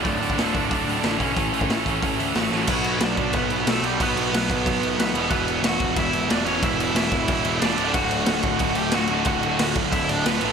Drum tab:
CC |----------------|----------------|x-x-x-x-x-x-x-x-|x-x-x-x-x-x-x-x-|
HH |o-o-o-o-o-o-o-o-|o-o-o-o-o-o-o---|----------------|----------------|
SD |----o-------o---|----o-------o-o-|----o-------o---|----o-------o---|
BD |o--o--o-o-----o-|o--o--o-o-------|o-----o-o-------|o-----o-o-------|

CC |x-x-x-x-x-x-x-x-|x-x-x-x-x-x-x-x-|x-x-x-x-x-x-x-x-|x-x-x-x-x-x-x-x-|
HH |----------------|----------------|----------------|----------------|
SD |----o-------o---|----o-------o---|----o-------o---|----o-------o---|
BD |o-----o-o-------|o-----o-o-------|o-----o-o-------|o-----o-o-------|